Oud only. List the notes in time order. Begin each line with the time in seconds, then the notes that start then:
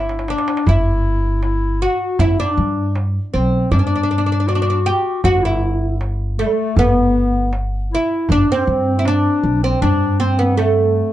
Already playing: E4
0.30 D4
0.69 E4
1.82 F#4
2.20 E4
2.40 D4
3.34 C4
3.72 D4
3.79 D4
3.87 D4
3.96 D4
4.03 D4
4.11 D4
4.18 D4
4.26 D4
4.32 D4
4.40 D4
4.49 D4
4.55 D4
4.62 D4
4.70 D4
4.86 G4
5.25 F#4
5.45 E4
6.39 A3
6.79 B3
7.95 E4
8.32 D4
8.52 C4
8.99 E4
9.08 D4
9.64 C4
9.82 D4
10.20 C4
10.39 B3
10.57 A3